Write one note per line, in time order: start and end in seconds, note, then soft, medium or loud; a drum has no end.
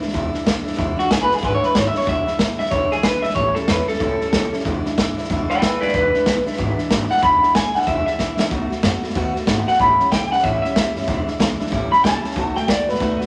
0.01 0.13 D2 loud
0.01 0.12 E3 soft
0.01 0.13 G#3 medium
0.01 0.13 D4 medium
0.01 0.13 E4 medium
0.01 snare soft
0.08 snare soft
0.13 0.33 E1 loud
0.13 0.34 E2 medium
0.13 0.34 B2 loud
0.13 0.34 E3 loud
0.13 0.33 G#3 medium
0.13 0.32 D4 loud
0.13 0.32 E4 loud
0.13 kick loud
0.13 snare soft
0.33 0.43 E3 soft
0.33 0.44 G#3 medium
0.33 0.44 D4 medium
0.33 0.45 E4 medium
0.33 snare soft
0.44 0.66 B1 loud
0.44 0.66 E3 medium
0.44 0.64 G#3 medium
0.44 0.64 D4 medium
0.44 0.63 E4 medium
0.44 kick medium
0.44 snare loud
0.44 hi-hat pedal medium
0.64 0.78 D2 medium
0.64 0.75 E3 medium
0.64 0.76 G#3 medium
0.64 0.76 D4 medium
0.64 0.76 E4 medium
0.64 snare soft
0.73 0.98 E2 medium
0.73 0.97 B2 medium
0.73 0.97 E3 medium
0.73 0.96 G#3 medium
0.73 snare soft
0.77 0.97 E1 loud
0.77 0.95 D4 loud
0.77 0.95 E4 loud
0.77 kick loud
0.77 snare soft
0.96 1.07 E3 soft
0.96 1.08 G#3 soft
0.96 1.09 D4 medium
0.96 1.10 E4 medium
0.96 1.11 F#4 medium
0.96 snare soft
1.08 1.29 B1 medium
1.08 1.30 E3 medium
1.08 1.29 G#3 medium
1.08 1.29 D4 medium
1.08 1.28 E4 medium
1.08 1.21 G#4 medium
1.08 kick medium
1.08 snare loud
1.08 hi-hat pedal medium
1.23 1.34 B4 medium
1.29 1.40 E3 soft
1.29 1.41 G#3 soft
1.29 1.40 D4 medium
1.29 1.41 E4 medium
1.29 muted upright bass stroke medium
1.29 snare soft
1.34 1.44 G#4 medium
1.34 snare soft
1.41 1.62 G#1 medium
1.41 1.62 E2 medium
1.41 1.62 B2 medium
1.41 1.62 E3 medium
1.41 1.62 G#3 medium
1.41 1.62 D4 medium
1.41 1.61 E4 loud
1.41 1.54 B4 medium
1.41 kick loud
1.41 snare soft
1.55 1.65 C#5 medium
1.62 1.73 E3 soft
1.62 1.74 G#3 soft
1.62 1.74 D4 medium
1.62 1.75 E4 medium
1.62 1.76 B4 medium
1.62 muted upright bass stroke medium
1.62 snare soft
1.75 1.94 G#1 loud
1.75 1.94 E3 medium
1.75 1.93 G#3 medium
1.75 1.92 E4 medium
1.75 1.86 C#5 loud
1.75 kick medium
1.75 snare loud
1.75 hi-hat pedal medium
1.88 1.97 E5 medium
1.94 2.04 E3 soft
1.94 2.05 G#3 medium
1.94 2.05 D4 medium
1.94 2.05 E4 medium
1.94 2.07 C#5 medium
1.94 muted upright bass stroke medium
1.94 snare soft
2.01 2.26 E2 medium
2.01 snare soft
2.05 2.26 E1 medium
2.05 2.26 B2 medium
2.05 2.26 E3 medium
2.05 2.26 G#3 medium
2.05 2.25 D4 medium
2.05 2.25 E4 medium
2.05 2.39 E5 medium
2.05 kick loud
2.05 snare soft
2.26 2.36 E3 soft
2.26 2.38 G#3 medium
2.26 2.38 D4 medium
2.26 2.39 E4 medium
2.26 muted upright bass stroke medium
2.26 snare soft
2.37 2.57 G#1 medium
2.37 2.58 E3 medium
2.37 2.59 G#3 medium
2.37 2.58 D4 medium
2.37 2.58 E4 medium
2.37 kick medium
2.37 snare loud
2.37 hi-hat pedal medium
2.58 2.70 D2 loud
2.58 2.71 E3 soft
2.58 2.71 G#3 soft
2.58 2.71 D4 medium
2.58 2.71 E4 medium
2.58 2.71 E5 loud
2.58 snare soft
2.66 snare soft
2.71 2.90 E1 loud
2.71 2.91 E2 medium
2.71 2.92 B2 medium
2.71 2.91 E3 medium
2.71 2.90 G#3 medium
2.71 2.90 D4 loud
2.71 2.89 E4 medium
2.71 2.91 C#5 loud
2.71 kick loud
2.71 snare soft
2.90 3.02 E3 soft
2.90 3.03 G#3 medium
2.90 3.04 D4 soft
2.90 3.03 E4 medium
2.90 3.03 G#4 medium
2.90 snare soft
3.03 3.23 E3 medium
3.03 3.24 G#3 medium
3.03 3.23 D4 medium
3.03 3.23 E4 medium
3.03 3.23 B4 loud
3.03 kick medium
3.03 snare loud
3.03 hi-hat pedal medium
3.22 3.35 D2 medium
3.22 3.36 E3 soft
3.22 3.36 G#3 soft
3.22 3.36 D4 medium
3.22 3.36 E4 medium
3.22 3.35 E5 medium
3.22 snare soft
3.30 snare soft
3.35 3.55 A1 loud
3.35 3.57 A2 medium
3.35 3.56 E3 medium
3.35 3.56 G3 medium
3.35 3.56 C#4 medium
3.35 3.55 E4 medium
3.35 3.55 C#5 medium
3.35 kick loud
3.35 snare soft
3.55 3.68 G3 soft
3.55 3.68 C#4 medium
3.55 3.68 E4 medium
3.55 3.69 A4 medium
3.55 snare soft
3.68 3.87 E2 medium
3.68 3.88 E3 medium
3.68 3.89 G3 medium
3.68 3.88 C#4 medium
3.68 3.88 E4 medium
3.68 3.88 B4 medium
3.68 kick medium
3.68 snare loud
3.68 hi-hat pedal medium
3.88 4.00 G3 soft
3.88 4.00 C#4 soft
3.88 4.01 E4 medium
3.88 4.63 A4 loud
3.88 muted upright bass stroke medium
3.88 snare soft
3.94 snare soft
4.00 4.19 C#2 loud
4.00 4.20 A2 medium
4.00 4.21 E3 medium
4.00 4.21 G3 medium
4.00 4.21 C#4 medium
4.00 4.19 E4 loud
4.00 kick loud
4.00 snare soft
4.20 4.33 G3 soft
4.20 4.33 C#4 medium
4.20 4.33 E4 medium
4.20 muted upright bass stroke medium
4.20 snare soft
4.32 4.52 C#2 loud
4.32 4.53 E3 medium
4.32 4.53 G3 medium
4.32 4.53 C#4 medium
4.32 4.52 E4 medium
4.32 kick medium
4.32 snare loud
4.32 hi-hat pedal medium
4.53 4.66 G3 soft
4.53 4.66 C#4 medium
4.53 4.65 E4 medium
4.53 muted upright bass stroke medium
4.53 snare soft
4.60 snare soft
4.65 4.84 E1 loud
4.65 4.85 E2 medium
4.65 4.86 B2 medium
4.65 4.86 E3 medium
4.65 4.85 G#3 medium
4.65 4.85 D4 medium
4.65 4.83 E4 loud
4.65 kick loud
4.65 snare soft
4.85 4.97 E3 medium
4.85 4.97 G#3 medium
4.85 4.98 D4 medium
4.85 4.97 E4 medium
4.85 muted upright bass stroke medium
4.85 snare soft
4.98 5.16 G#1 medium
4.98 5.17 E3 medium
4.98 5.18 G#3 medium
4.98 5.17 D4 medium
4.98 5.16 E4 medium
4.98 kick medium
4.98 snare loud
4.98 hi-hat pedal medium
5.16 5.28 D2 loud
5.16 5.29 E3 medium
5.16 5.29 G#3 medium
5.16 5.30 D4 medium
5.16 5.29 E4 medium
5.16 snare soft
5.24 snare soft
5.30 5.49 E1 loud
5.30 5.50 E2 loud
5.30 5.49 B2 medium
5.30 5.50 E3 loud
5.30 5.50 G#3 loud
5.30 5.50 D4 loud
5.30 5.48 E4 loud
5.30 kick loud
5.30 snare soft
5.49 5.62 E3 soft
5.49 5.63 G#3 medium
5.49 5.62 D4 medium
5.49 5.61 E4 medium
5.49 5.62 D5 medium
5.49 5.63 G5 loud
5.49 muted upright bass stroke medium
5.49 snare soft
5.62 5.81 B1 loud
5.62 5.82 E3 medium
5.62 5.83 G#3 medium
5.62 5.81 E4 medium
5.62 5.79 B4 medium
5.62 5.82 E5 loud
5.62 kick medium
5.62 snare loud
5.62 hi-hat pedal medium
5.81 5.93 D2 medium
5.81 5.95 G#3 soft
5.81 5.95 D4 medium
5.81 5.94 E4 medium
5.81 5.92 B4 medium
5.81 5.93 D5 loud
5.81 snare soft
5.85 5.94 E3 soft
5.85 snare soft
5.94 6.13 E1 loud
5.94 6.14 E2 medium
5.94 6.14 B2 medium
5.94 6.15 E3 medium
5.94 6.15 G#3 medium
5.94 6.14 D4 medium
5.94 6.13 E4 medium
5.94 6.88 B4 medium
5.94 kick loud
5.94 snare soft
6.14 6.25 E3 soft
6.14 6.27 G#3 soft
6.14 6.27 D4 medium
6.14 6.26 E4 medium
6.14 snare soft
6.26 6.45 B1 medium
6.26 6.46 E3 medium
6.26 6.46 G#3 medium
6.26 6.45 D4 medium
6.26 6.45 E4 medium
6.26 kick medium
6.26 snare loud
6.26 hi-hat pedal medium
6.45 6.57 E3 medium
6.45 6.57 G#3 medium
6.45 6.57 D4 medium
6.45 6.57 E4 medium
6.45 muted upright bass stroke medium
6.45 snare soft
6.53 snare soft
6.57 6.77 G#1 loud
6.57 6.78 E2 loud
6.57 6.78 B2 loud
6.57 6.78 E3 loud
6.57 6.78 G#3 loud
6.57 6.77 D4 loud
6.57 6.77 E4 loud
6.57 kick loud
6.57 snare soft
6.78 6.89 E3 medium
6.78 6.89 G#3 medium
6.78 6.90 D4 medium
6.78 6.90 E4 medium
6.78 snare soft
6.90 7.09 G#1 loud
6.90 7.10 E3 medium
6.90 7.09 G#3 medium
6.90 7.09 D4 medium
6.90 7.09 E4 medium
6.90 kick medium
6.90 snare loud
6.90 hi-hat pedal medium
7.10 7.22 E3 soft
7.10 7.22 G#3 medium
7.10 7.22 D4 medium
7.10 7.22 E4 medium
7.10 7.22 F#5 loud
7.10 snare soft
7.17 snare soft
7.22 7.42 E1 loud
7.22 7.42 E2 medium
7.22 7.42 B2 medium
7.22 7.42 E3 medium
7.22 7.42 G#3 medium
7.22 7.41 D4 medium
7.22 7.41 E4 medium
7.22 7.54 B5 loud
7.22 kick loud
7.22 snare soft
7.42 7.53 E3 soft
7.42 7.54 G#3 medium
7.42 7.54 D4 medium
7.42 7.54 E4 medium
7.42 muted upright bass stroke medium
7.42 snare soft
7.54 7.73 G#1 medium
7.54 7.74 E3 medium
7.54 7.75 G#3 medium
7.54 7.75 E4 medium
7.54 7.75 G#5 medium
7.54 kick medium
7.54 snare loud
7.54 hi-hat pedal medium
7.74 7.86 D2 loud
7.74 7.87 E3 soft
7.74 7.88 G#3 medium
7.74 7.88 D4 medium
7.74 7.87 E4 medium
7.74 7.87 F#5 medium
7.74 snare soft
7.82 snare soft
7.87 8.06 E1 loud
7.87 8.07 E2 medium
7.87 8.07 B2 medium
7.87 8.07 E3 medium
7.87 8.07 G#3 medium
7.87 8.07 D4 medium
7.87 8.06 E4 medium
7.87 8.05 E5 medium
7.87 kick loud
7.87 snare soft
8.06 8.18 E3 soft
8.06 8.19 G#3 soft
8.06 8.20 D4 medium
8.06 8.19 E4 medium
8.06 8.50 E5 loud
8.06 snare soft
8.19 8.38 B1 loud
8.19 8.39 E3 medium
8.19 8.39 G#3 medium
8.19 8.38 D4 medium
8.19 8.38 E4 medium
8.19 kick medium
8.19 snare medium
8.19 hi-hat pedal medium
8.39 8.51 D2 medium
8.39 8.50 E3 soft
8.39 8.51 G#3 soft
8.39 8.51 D4 soft
8.39 8.51 E4 medium
8.39 snare loud
8.50 8.70 B1 loud
8.50 8.71 B2 medium
8.50 8.71 D#3 loud
8.50 8.71 A3 loud
8.50 8.70 B3 medium
8.50 8.69 F#4 loud
8.50 kick loud
8.50 snare soft
8.70 8.81 A3 soft
8.70 8.82 B3 medium
8.70 8.82 F#4 medium
8.70 muted upright bass stroke medium
8.70 snare soft
8.82 9.02 F#2 medium
8.82 9.02 D#3 medium
8.82 9.03 A3 medium
8.82 9.02 B3 medium
8.82 9.01 F#4 medium
8.82 kick medium
8.82 snare loud
8.82 hi-hat pedal medium
9.03 9.14 A3 medium
9.03 9.14 B3 medium
9.03 9.15 F#4 medium
9.03 muted upright bass stroke medium
9.03 snare soft
9.10 snare soft
9.15 9.35 D#2 medium
9.15 9.35 B2 medium
9.15 9.35 D#3 medium
9.15 9.34 A3 loud
9.15 9.33 B3 loud
9.15 9.33 F#4 loud
9.15 kick loud
9.15 snare soft
9.34 9.46 A3 medium
9.34 9.47 B3 medium
9.34 9.47 F#4 medium
9.34 muted upright bass stroke medium
9.34 snare soft
9.46 9.67 G#1 loud
9.46 9.67 D#3 medium
9.46 9.67 A3 medium
9.46 9.67 B3 medium
9.46 9.66 F#4 medium
9.46 kick medium
9.46 snare loud
9.46 hi-hat pedal medium
9.67 9.80 A3 soft
9.67 9.80 B3 medium
9.67 9.79 F#4 medium
9.67 9.80 F#5 loud
9.67 muted upright bass stroke medium
9.67 snare soft
9.74 snare soft
9.79 9.99 A1 loud
9.79 10.00 A2 medium
9.79 9.99 E3 medium
9.79 10.00 G3 medium
9.79 9.99 C#4 medium
9.79 9.98 E4 medium
9.79 10.11 B5 medium
9.79 kick loud
9.79 snare soft
10.00 10.11 G3 soft
10.00 10.11 C#4 medium
10.00 10.12 E4 medium
10.00 muted upright bass stroke medium
10.00 snare soft
10.11 10.30 C#2 medium
10.11 10.31 E3 medium
10.11 10.31 G3 medium
10.11 10.30 C#4 medium
10.11 10.28 E4 medium
10.11 10.31 G5 loud
10.11 kick medium
10.11 snare loud
10.11 hi-hat pedal medium
10.30 10.43 G1 loud
10.30 10.43 G3 soft
10.30 10.43 C#4 soft
10.30 10.43 E4 medium
10.30 10.44 F#5 medium
10.30 snare soft
10.39 snare soft
10.43 10.63 A1 loud
10.43 10.63 A2 medium
10.43 10.64 E3 medium
10.43 10.64 G3 loud
10.43 10.64 C#4 medium
10.43 10.63 E4 loud
10.43 10.61 E5 loud
10.43 kick loud
10.43 snare soft
10.62 10.76 C#4 medium
10.62 10.76 E4 medium
10.62 11.25 E5 loud
10.62 snare soft
10.66 10.75 G3 soft
10.76 10.96 E3 medium
10.76 10.96 G3 medium
10.76 10.97 C#4 medium
10.76 10.96 E4 medium
10.76 kick medium
10.76 snare loud
10.76 hi-hat pedal medium
10.96 11.07 G2 medium
10.96 11.08 G3 soft
10.96 11.08 C#4 soft
10.96 11.07 E4 medium
10.96 snare soft
11.02 snare soft
11.07 11.27 E1 loud
11.07 11.27 E2 loud
11.07 11.28 B2 loud
11.07 11.28 E3 loud
11.07 11.27 G#3 loud
11.07 11.26 D4 loud
11.07 11.25 E4 loud
11.07 kick loud
11.07 snare soft
11.26 11.37 E3 medium
11.26 11.38 G#3 medium
11.26 11.39 D4 medium
11.26 11.39 E4 medium
11.26 snare soft
11.39 11.59 B1 medium
11.39 11.59 E3 medium
11.39 11.59 G#3 medium
11.39 11.59 D4 medium
11.39 11.58 E4 medium
11.39 kick medium
11.39 snare loud
11.39 hi-hat pedal medium
11.59 11.70 E3 medium
11.59 11.70 G#3 medium
11.59 11.72 D4 medium
11.59 11.71 E4 medium
11.59 muted upright bass stroke medium
11.59 snare soft
11.67 snare soft
11.71 11.91 A1 medium
11.71 11.92 A2 loud
11.71 11.92 E3 medium
11.71 11.92 G3 loud
11.71 11.91 C#4 loud
11.71 11.90 E4 loud
11.71 kick loud
11.71 snare soft
11.91 12.03 G3 medium
11.91 12.03 C#4 medium
11.91 12.03 E4 medium
11.91 12.04 B5 loud
11.91 snare soft
12.03 12.23 C#2 loud
12.03 12.24 E3 medium
12.03 12.24 G3 medium
12.03 12.24 C#4 medium
12.03 12.23 E4 medium
12.03 12.55 A5 loud
12.03 kick medium
12.03 snare loud
12.03 hi-hat pedal medium
12.24 12.36 G3 soft
12.24 12.37 C#4 medium
12.24 12.36 E4 medium
12.24 muted upright bass stroke medium
12.24 snare soft
12.31 snare soft
12.36 12.55 B1 loud
12.36 12.56 B2 medium
12.36 12.56 D#3 medium
12.36 12.55 A3 medium
12.36 12.54 B3 medium
12.36 12.53 F#4 medium
12.36 kick loud
12.36 snare soft
12.54 12.66 A3 medium
12.54 12.66 B3 medium
12.54 12.68 F#4 medium
12.54 12.68 G5 medium
12.54 muted upright bass stroke medium
12.54 snare soft
12.66 12.87 D#3 medium
12.66 12.88 A3 medium
12.66 12.87 B3 medium
12.66 12.86 F#4 medium
12.66 12.89 D5 loud
12.66 kick loud
12.66 snare loud
12.66 hi-hat pedal medium
12.88 13.00 A1 loud
12.88 12.99 A3 soft
12.88 12.99 B3 soft
12.88 13.00 F#4 medium
12.88 13.26 B4 loud
12.88 snare soft
12.95 snare soft
13.00 13.20 B1 loud
13.00 13.20 B2 medium
13.00 13.20 D#3 medium
13.00 13.20 A3 loud
13.00 13.19 B3 medium
13.00 13.18 F#4 medium
13.00 kick loud
13.00 snare soft
13.19 13.26 A3 medium
13.19 13.26 B3 medium
13.19 13.26 F#4 medium
13.19 muted upright bass stroke medium
13.19 snare soft